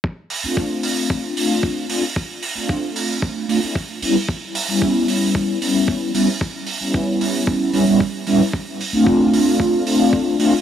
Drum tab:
HH |-o-o-o-o|-o-o-o-o|-o-o-o-o|-o-o-o-o|
BD |o-o-o-o-|o-o-o-o-|o-o-o-o-|o-o-o-o-|

HH |-o-o-o-o|
BD |o-o-o-o-|